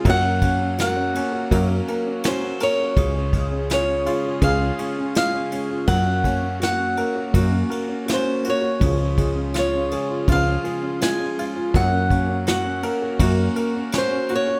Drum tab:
RD |xxxxxxxx|xxxxxxxx|xxxxxxxx|xxxxxxxx|
SD |--o---o-|--o---o-|--o---o-|--o---o-|
BD |oo--o---|oo--o---|oo--o---|oo--o---|

RD |xxxxxxxx|
SD |--o---o-|
BD |oo--o---|